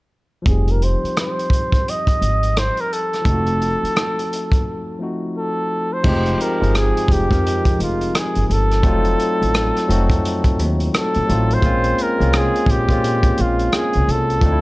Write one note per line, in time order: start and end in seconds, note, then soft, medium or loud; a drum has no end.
0.42 3.19 F3 medium
0.42 3.20 G3 soft
0.42 kick medium
0.46 0.93 F1 medium
0.46 3.22 C4 soft
0.46 3.23 D#4 soft
0.46 0.73 G#4 medium
0.46 closed hi-hat medium
0.51 3.24 G4 medium
0.68 0.85 A#4 medium
0.68 closed hi-hat soft
0.82 1.17 C5 medium
0.82 closed hi-hat medium
1.03 muted upright bass stroke soft
1.03 closed hi-hat soft
1.17 1.91 C5 medium
1.17 cross-stick medium
1.17 closed hi-hat medium
1.39 closed hi-hat soft
1.50 kick medium
1.50 closed hi-hat medium
1.72 kick medium
1.72 closed hi-hat soft
1.88 2.60 D#5 medium
1.88 closed hi-hat medium
2.07 muted upright bass stroke soft
2.07 kick medium
2.07 closed hi-hat soft
2.21 2.68 G#1 medium
2.21 closed hi-hat medium
2.43 closed hi-hat soft
2.57 2.82 C5 medium
2.57 cross-stick medium
2.57 closed hi-hat medium
2.77 2.95 A#4 medium
2.77 closed hi-hat soft
2.93 5.01 A4 medium
2.93 closed hi-hat medium
3.13 cross-stick soft
3.13 closed hi-hat soft
3.22 3.72 F1 medium
3.22 4.94 F3 medium
3.22 4.96 A3 medium
3.22 kick medium
3.26 4.97 C4 soft
3.26 4.98 D#4 soft
3.26 closed hi-hat medium
3.31 4.99 F#4 medium
3.47 closed hi-hat soft
3.62 closed hi-hat medium
3.83 muted upright bass stroke soft
3.83 closed hi-hat soft
3.96 cross-stick medium
3.96 closed hi-hat medium
4.19 closed hi-hat soft
4.33 closed hi-hat medium
4.52 kick medium
4.52 closed hi-hat soft
4.99 6.02 F3 soft
4.99 6.05 A3 soft
4.99 6.05 C4 soft
4.99 6.05 D#4 soft
5.03 6.06 F#4 soft
5.38 5.95 A4 medium
5.93 6.44 C5 medium
6.03 6.34 F1 medium
6.03 6.55 F3 medium
6.03 6.56 G#3 medium
6.03 6.57 C4 medium
6.03 6.57 D#4 medium
6.03 kick medium
6.03 crash medium
6.08 6.58 G4 medium
6.26 closed hi-hat soft
6.41 6.80 A#4 medium
6.41 closed hi-hat medium
6.60 6.90 G1 medium
6.60 7.23 F3 medium
6.60 7.24 G#3 medium
6.60 7.24 C4 medium
6.60 7.25 D#4 medium
6.60 closed hi-hat soft
6.65 7.26 G#4 medium
6.75 7.14 G#4 medium
6.75 cross-stick medium
6.75 closed hi-hat medium
6.97 closed hi-hat soft
7.08 7.27 F1 medium
7.08 7.80 G4 medium
7.08 kick medium
7.08 closed hi-hat medium
7.29 7.81 F2 medium
7.29 8.55 F3 medium
7.29 8.56 G#3 medium
7.29 8.57 C4 soft
7.29 8.57 D#4 medium
7.29 kick medium
7.29 closed hi-hat soft
7.34 8.58 A#4 medium
7.47 closed hi-hat medium
7.65 kick medium
7.65 closed hi-hat medium
7.80 8.08 F1 medium
7.80 8.19 F4 medium
7.80 closed hi-hat medium
8.01 closed hi-hat soft
8.15 8.48 G#4 medium
8.15 cross-stick medium
8.15 closed hi-hat medium
8.35 8.47 G1 medium
8.35 closed hi-hat soft
8.48 8.84 G1 medium
8.48 8.54 G#4 medium
8.48 closed hi-hat medium
8.53 10.70 A4 medium
8.71 cross-stick soft
8.71 closed hi-hat soft
8.82 9.12 F1 medium
8.82 9.81 F#3 medium
8.82 9.82 A3 medium
8.82 9.82 C4 medium
8.82 9.83 D#4 medium
8.82 kick medium
8.82 closed hi-hat medium
8.87 9.84 F4 medium
9.05 closed hi-hat soft
9.20 closed hi-hat medium
9.42 9.70 A1 medium
9.42 closed hi-hat soft
9.54 cross-stick medium
9.54 closed hi-hat medium
9.77 cross-stick soft
9.77 closed hi-hat soft
9.87 10.07 F1 medium
9.87 11.19 F#3 medium
9.87 11.19 A3 medium
9.87 11.20 C4 medium
9.87 11.21 D#4 medium
9.87 closed hi-hat medium
9.92 11.21 F#4 medium
10.10 10.59 F2 medium
10.10 kick medium
10.10 closed hi-hat soft
10.25 closed hi-hat medium
10.44 kick medium
10.44 closed hi-hat medium
10.59 10.87 D#2 medium
10.59 closed hi-hat medium
10.80 closed hi-hat soft
10.94 11.56 A4 medium
10.94 cross-stick medium
10.94 closed hi-hat medium
11.14 11.26 A#1 medium
11.14 closed hi-hat soft
11.26 11.57 A1 medium
11.26 11.60 F#3 medium
11.26 11.60 A3 medium
11.26 11.61 C4 medium
11.26 11.62 D#4 medium
11.26 closed hi-hat medium
11.31 11.62 F4 medium
11.51 12.04 C5 medium
11.51 closed hi-hat soft
11.62 11.91 A#1 medium
11.62 12.14 G#3 medium
11.62 12.14 A#3 medium
11.62 12.15 C4 medium
11.62 12.15 C#4 medium
11.62 kick loud
11.62 closed hi-hat medium
11.66 12.16 F4 medium
11.84 closed hi-hat soft
11.98 closed hi-hat medium
12.03 12.39 A#4 medium
12.18 12.49 C2 medium
12.18 12.81 G#3 medium
12.18 12.82 A#3 medium
12.18 12.83 C4 medium
12.18 12.83 C#4 medium
12.18 closed hi-hat soft
12.23 12.84 F4 medium
12.33 cross-stick loud
12.33 closed hi-hat medium
12.37 12.73 G#4 medium
12.56 closed hi-hat soft
12.66 12.85 A#1 medium
12.66 kick medium
12.66 closed hi-hat medium
12.71 13.43 G4 medium
12.88 13.28 A#2 medium
12.88 14.14 G#3 medium
12.88 14.15 A#3 medium
12.88 14.15 C4 medium
12.88 14.16 C#4 medium
12.88 kick medium
12.88 closed hi-hat soft
12.92 14.16 F4 medium
13.04 closed hi-hat medium
13.23 kick medium
13.23 closed hi-hat medium
13.38 13.67 A#1 medium
13.38 13.78 F4 medium
13.38 closed hi-hat medium
13.59 closed hi-hat soft
13.72 14.13 G#4 medium
13.72 cross-stick medium
13.72 closed hi-hat medium
13.93 14.06 C2 medium
13.93 closed hi-hat soft
14.08 14.36 C2 medium
14.08 14.61 A4 loud
14.08 closed hi-hat medium
14.30 closed hi-hat soft
14.41 14.61 D2 medium
14.41 14.61 F3 medium
14.41 14.61 A3 medium
14.41 14.61 C4 medium
14.41 14.61 D4 medium
14.41 kick loud
14.41 closed hi-hat medium
14.45 14.52 D#4 medium
14.52 14.61 E4 medium